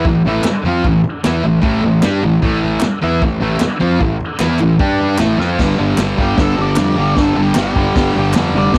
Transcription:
0.05 fingered electric bass A1, distorted electric guitar A2 E3, kick, floor tom
0.25 fingered electric bass A1, distorted electric guitar A2 E3 A3, floor tom
0.44 muted fingered electric bass stroke, muted distorted electric guitar stroke, snare, clap, floor tom
0.63 fingered electric bass F2, distorted electric guitar F3 C4 F4, floor tom
0.84 fingered electric bass A1, distorted electric guitar A2 E3, kick, floor tom
1.04 floor tom
1.24 fingered electric bass E2, distorted electric guitar E3 B3 E4, snare, clap, floor tom
1.43 fingered electric bass A1, distorted electric guitar A2 E3, floor tom
1.61 fingered electric bass A1, distorted electric guitar A2 E3 A3, kick, floor tom
1.83 fingered electric bass A1, distorted electric guitar A2 E3, floor tom
2.02 fingered electric bass G2, distorted electric guitar G3 D4 G4, snare, clap, floor tom
2.23 fingered electric bass A1, distorted electric guitar A2 E3, floor tom
2.42 fingered electric bass A1, distorted electric guitar A2 E3 A3, kick, floor tom
2.63 floor tom
2.80 muted fingered electric bass stroke, muted distorted electric guitar stroke, snare, clap, floor tom
3.02 fingered electric bass E2, distorted electric guitar E3 B3 E4, floor tom
3.22 fingered electric bass A1, distorted electric guitar A2 E3, kick, floor tom
3.40 fingered electric bass A1, distorted electric guitar A2 E3 A3, floor tom
3.60 muted fingered electric bass stroke, muted distorted electric guitar stroke, snare, clap, floor tom
3.80 fingered electric bass F2, distorted electric guitar F3 C4 F4, floor tom
4.00 fingered electric bass A1, distorted electric guitar A2 E3, kick, floor tom
4.20 floor tom
4.39 fingered electric bass E2, distorted electric guitar E3 B3 E4, snare, clap, floor tom
4.59 fingered electric bass A1, distorted electric guitar A2 E3, clap, floor tom
4.79 fingered electric bass G2, distorted electric guitar G3 D4 G4, kick, floor tom
5.00 floor tom
5.18 fingered electric bass A1, distorted electric guitar A2 E3 A3, snare, clap, floor tom
5.37 fingered electric bass F2, distorted electric guitar F3 C4 F4, snare
5.58 fingered electric bass G1, distorted electric guitar G2 D3 G3, kick, snare, crash
5.79 fingered electric bass G1, distorted electric guitar G2 D3 G3
5.97 fingered electric bass G1, distorted electric guitar G2 D3 G3, snare, clap, open hi-hat
6.18 fingered electric bass G1, distorted electric guitar G2 D3 G3, lead electric guitar G4, kick
6.37 fingered electric bass G1, distorted electric guitar G2 D3 G3, kick, snare, open hi-hat
6.41 lead electric guitar A4
6.56 fingered electric bass G1, distorted electric guitar G2 D3 G3
6.61 lead electric guitar D5
6.76 fingered electric bass F2, distorted electric guitar G2 D3 G3, snare, clap, open hi-hat
6.96 fingered electric bass G1, distorted electric guitar G2 D3 G3
7.15 fingered electric bass G1, distorted electric guitar G2 D3 G3, kick, snare, open hi-hat
7.22 lead electric guitar A4
7.36 fingered electric bass G1, distorted electric guitar G2 D3 G3
7.43 lead electric guitar G4
7.55 fingered electric bass G1, distorted electric guitar G2 D3 G3, snare, clap, open hi-hat
7.63 lead electric guitar G4
7.76 fingered electric bass G1, distorted electric guitar G2 D3 G3, kick
7.95 fingered electric bass G1, distorted electric guitar G2 D3 G3, kick, snare, open hi-hat
8.15 fingered electric bass G1, distorted electric guitar G2 D3 G3
8.33 fingered electric bass F2, distorted electric guitar G2 D3 G3, snare, clap, open hi-hat
8.53 fingered electric bass F1, distorted electric guitar G2 D3 G3
8.58 lead electric guitar D5
8.74 fingered electric bass E1, distorted electric guitar E2 B2, kick, snare, open hi-hat

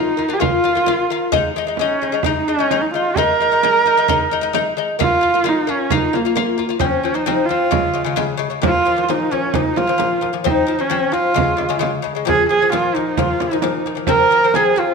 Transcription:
Already playing: lute A#3 F4, horsehead fiddle D#4
0.17 lute A#3 F4, frame drum
0.29 lute A#3 F4
0.34 horsehead fiddle G#4
0.40 lute A#3 F4, horsehead fiddle F4, frame drum
0.64 lute A#3 F4
0.75 lute A#3 F4, frame drum
0.86 lute A#3 F4, frame drum
1.10 lute A#3 F4
1.32 lute G#3 D#4, frame drum
1.56 lute G#3 D#4
1.67 lute G#3 D#4, frame drum
1.77 lute G#3 D#4, horsehead fiddle C#4, frame drum
2.02 lute G#3 D#4, frame drum
2.12 lute G#3 D#4
2.23 lute G#3 D#4, horsehead fiddle D#4, frame drum
2.38 horsehead fiddle D#4
2.48 lute G#3 D#4, horsehead fiddle C#4
2.59 lute G#3 D#4, frame drum
2.71 lute G#3 D#4, frame drum
2.82 horsehead fiddle D#4
2.93 lute G#3 D#4, horsehead fiddle F4
3.16 lute G#3 D#4, horsehead fiddle A#4, frame drum
3.40 lute G#3 D#4
3.51 lute G#3 D#4, frame drum
3.63 lute G#3 D#4, frame drum
3.85 lute G#3 D#4, frame drum
3.97 lute G#3 D#4
4.08 lute G#3 D#4, frame drum
4.31 lute G#3 D#4
4.41 lute G#3 D#4, frame drum
4.53 lute G#3 D#4, frame drum
4.77 lute G#3 D#4
4.99 lute A#3 F4, horsehead fiddle F4, frame drum
5.21 lute A#3 F4, frame drum
5.34 lute A#3 F4
5.44 lute A#3 F4, frame drum
5.49 horsehead fiddle D#4
5.67 lute A#3 F4, horsehead fiddle C#4, frame drum
5.90 lute A#3 F4, horsehead fiddle D#4, frame drum
6.13 lute A#3 F4, horsehead fiddle A#3, frame drum
6.25 lute A#3 F4
6.36 lute A#3 F4, frame drum
6.58 lute A#3 F4, frame drum
6.69 lute A#3 F4
6.79 lute F3 C4, horsehead fiddle C#4, frame drum
7.04 lute F3 C4, frame drum
7.14 lute F3 C4, horsehead fiddle D#4
7.26 lute F3 C4, frame drum
7.46 lute F3, horsehead fiddle F4
7.50 lute C4, frame drum
7.71 lute C#3 G#3, frame drum
7.94 lute C#3 G#3
8.04 lute C#3 G#3
8.16 lute C#3 G#3, frame drum
8.37 lute C#3 G#3, frame drum
8.50 lute C#3 G#3
8.62 lute A#2 F3, frame drum
8.67 horsehead fiddle F4
8.85 lute A#2 F3, frame drum
8.97 lute A#2 F3
9.03 horsehead fiddle F4
9.09 lute A#2 F3, horsehead fiddle D#4, frame drum
9.31 lute A#2 F3, horsehead fiddle C#4, frame drum
9.54 lute A#2 F3, horsehead fiddle D#4, frame drum
9.76 lute A#2 F3, horsehead fiddle F4, frame drum
9.87 lute A#2 F3
9.98 lute A#2 F3, frame drum
10.21 lute A#2 F3, frame drum
10.33 lute A#2 F3
10.44 lute F3 C4, horsehead fiddle D#4, frame drum
10.67 lute F3 C4, frame drum
10.79 lute F3 C4, horsehead fiddle C#4
10.90 lute F3 C4, frame drum
11.12 lute F3 C4, horsehead fiddle F4, frame drum
11.34 lute C#3 G#3, frame drum
11.57 lute C#3 G#3, frame drum
11.69 lute C#3 G#3
11.79 lute C#3 G#3, frame drum
12.02 lute C#3 G#3, frame drum
12.15 lute C#3 G#3
12.25 lute A#2 F3, horsehead fiddle G#4, frame drum
12.49 lute A#2 F3, horsehead fiddle G#4, frame drum
12.61 lute A#2 F3
12.72 lute A#2 F3, horsehead fiddle F4, frame drum
12.95 lute A#2 F3, horsehead fiddle D#4, frame drum
13.17 lute A#2 F3, horsehead fiddle F4, frame drum
13.40 lute A#2 F3, horsehead fiddle D#4, frame drum
13.51 lute A#2 F3
13.62 lute A#2 F3, frame drum
13.85 lute A#2 F3, frame drum
13.95 lute A#2 F3
14.07 lute F3 C4, horsehead fiddle A#4, frame drum
14.30 lute F3 C4, frame drum
14.44 lute F3 C4
14.54 lute F3 C4, horsehead fiddle G#4, frame drum
14.76 lute F3 C4, horsehead fiddle F4, frame drum

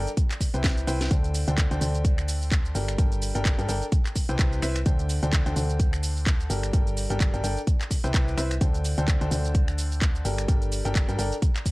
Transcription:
0.07 closed hi-hat, shaker
0.17 kick, closed hi-hat, shaker
0.31 finger snap, clap, closed hi-hat, shaker
0.41 kick, open hi-hat, shaker
0.54 fm bass C2, upright piano C3 E4 B4 C5 G5, closed hi-hat, shaker
0.64 kick, snare, clap, closed hi-hat, shaker
0.77 closed hi-hat, shaker
0.87 fm bass C2, upright piano E4 B4 C5 G5, open hi-hat, shaker
1.01 snare, closed hi-hat, shaker
1.11 fm bass D2, upright piano D3 D4 A4 C5 G5, kick, closed hi-hat, shaker
1.24 closed hi-hat, shaker
1.34 open hi-hat, shaker
1.48 fm bass D2, upright piano D3 D4 A4 C5 G5, closed hi-hat, shaker
1.58 kick, clap, closed hi-hat, shaker
1.71 fm bass D2, upright piano D3 D4 A4 C5 G5, closed hi-hat, shaker
1.81 fm bass D2, upright piano D3 D4 A4 C5 G5, open hi-hat, shaker
1.95 closed hi-hat, shaker
2.05 kick, closed hi-hat, shaker
2.18 finger snap, shaker
2.28 open hi-hat, shaker
2.42 shaker
2.52 kick, clap, closed hi-hat, shaker
2.65 shaker
2.75 fm bass G1, upright piano G3 D4 A4 A#4 G5, open hi-hat, shaker
2.88 finger snap, closed hi-hat, shaker
2.98 fm bass G1, upright piano G3 D4 A4 A#4 G5, kick, closed hi-hat, shaker
3.12 closed hi-hat, shaker
3.22 open hi-hat, shaker
3.35 fm bass G1, upright piano G3 D4 A4 A#4 G5, closed hi-hat, shaker
3.45 kick, clap, closed hi-hat, shaker
3.59 fm bass G2, upright piano G3 D4 A4 A#4 G5, closed hi-hat, shaker
3.69 fm bass G1, upright piano D4 A4 A#4 G5, open hi-hat, shaker
3.82 closed hi-hat, shaker
3.92 kick, closed hi-hat, shaker
4.05 finger snap, clap, shaker
4.15 kick, open hi-hat, shaker
4.29 fm bass C2, upright piano C3 E4 B4 C5 G5, closed hi-hat, shaker
4.39 fm bass C2, upright piano C3 E4 B4 C5 G5, kick, clap, closed hi-hat, shaker
4.53 shaker
4.62 fm bass C2, upright piano E4 B4 C5 E5, finger snap, open hi-hat, shaker
4.76 finger snap, closed hi-hat, shaker
4.86 fm bass D2, upright piano D3 D4 A4 C5 G5, kick, closed hi-hat, shaker
4.99 closed hi-hat, shaker
5.09 open hi-hat, shaker
5.23 fm bass D2, upright piano D3 D4 A4 C5 G5, closed hi-hat, shaker
5.33 kick, clap, closed hi-hat, shaker
5.46 fm bass D2, upright piano D3 D4 A4 C5 G5, closed hi-hat, shaker
5.56 fm bass D2, upright piano D3 D4 A4 C5 G5, open hi-hat, shaker
5.70 closed hi-hat, shaker
5.80 kick, closed hi-hat, shaker
5.93 finger snap, shaker
6.03 open hi-hat, shaker
6.17 shaker
6.27 kick, clap, closed hi-hat, shaker
6.40 shaker
6.50 fm bass G1, upright piano G3 D4 A4 A#4 G5, open hi-hat, shaker
6.63 finger snap, closed hi-hat, shaker
6.73 fm bass G1, upright piano G3 D4 A4 A#4 G5, kick, closed hi-hat, shaker
6.87 closed hi-hat, shaker
6.97 open hi-hat, shaker
7.10 fm bass G1, upright piano G3 D4 A4 A#4 G5, closed hi-hat, shaker
7.20 kick, clap, closed hi-hat, shaker
7.34 fm bass G1, upright piano G3 D4 A4 A#4 G5, closed hi-hat, shaker
7.44 fm bass G1, upright piano D4 A4 A#4 G5, open hi-hat, shaker
7.57 closed hi-hat, shaker
7.67 kick, closed hi-hat, shaker
7.81 finger snap, clap, shaker
7.91 kick, open hi-hat, shaker
8.04 fm bass C2, upright piano C3 E4 B4 C5 G5, closed hi-hat, shaker
8.14 fm bass C2, upright piano C3 E4 B4 C5 G5, kick, clap, closed hi-hat, shaker
8.28 shaker
8.37 fm bass C2, upright piano E4 B4 C5 E5, finger snap, open hi-hat, shaker
8.51 finger snap, closed hi-hat, shaker
8.61 fm bass D2, upright piano D3 D4 A4 C5 G5, kick, closed hi-hat, shaker
8.74 closed hi-hat, shaker
8.84 open hi-hat, shaker
8.98 fm bass D2, upright piano D3 D4 A4 C5 G5, closed hi-hat, shaker
9.08 kick, clap, closed hi-hat, shaker
9.21 fm bass D2, upright piano D3 D4 A4 C5 G5, closed hi-hat, shaker
9.31 fm bass D2, upright piano D3 D4 A4 C5 G5, open hi-hat, shaker
9.45 closed hi-hat, shaker
9.55 kick, closed hi-hat, shaker
9.68 finger snap, shaker
9.78 open hi-hat, shaker
9.92 shaker
10.02 kick, clap, closed hi-hat, shaker
10.15 shaker
10.25 fm bass G1, upright piano G3 D4 A4 A#4 G5, open hi-hat, shaker
10.38 finger snap, closed hi-hat, shaker
10.48 fm bass G1, upright piano G3 D4 A4 A#4 G5, kick, closed hi-hat, shaker
10.62 closed hi-hat, shaker
10.72 open hi-hat, shaker
10.85 fm bass G1, upright piano G3 D4 A4 A#4 G5, closed hi-hat, shaker
10.95 kick, clap, closed hi-hat, shaker
11.09 fm bass G2, upright piano G3 D4 A4 A#4 G5, closed hi-hat, shaker
11.19 fm bass G1, upright piano D4 A4 A#4 G5, open hi-hat, shaker
11.32 closed hi-hat, shaker
11.42 kick, closed hi-hat, shaker
11.56 finger snap, clap, shaker
11.66 kick, open hi-hat, shaker

